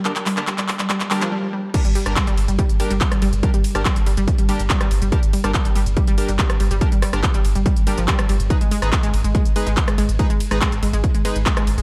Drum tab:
CC |----------------|x---------------|----------------|----------------|
RD |----------------|x-x-x-x-x-x-x-x-|x-x-x-x-x-x-x-x-|x-x-x-x-x-x-x-x-|
HH |xxoxxxoxxxox----|xxoxxxoxxxoxxxox|xxoxxxoxxxoxxxox|xxoxxxoxxxoxxxox|
CP |xxxxxxxxxxxx----|----x-------x---|----x-------x---|----x-------x---|
SD |----------------|---r---------r--|---r---------r--|---r---------r--|
BD |----------------|o---o---o---o---|o---o---o---o---|o---o---o---o---|

CC |----------------|----------------|----------------|
RD |x-x-x-x-x-x-x-x-|x-x-x-x-x-x-x-x-|x-x-x-x-x-x-x-x-|
HH |xxoxxxoxxxoxxxox|xxoxxxoxxxoxxxox|xxoxxxoxxxoxxxox|
CP |----x-------x---|----x-------x---|----x-------x---|
SD |--rr---------r--|---r---------r--|---r---------r--|
BD |o---o---o---o---|o---o---o---o---|o---o---o---o---|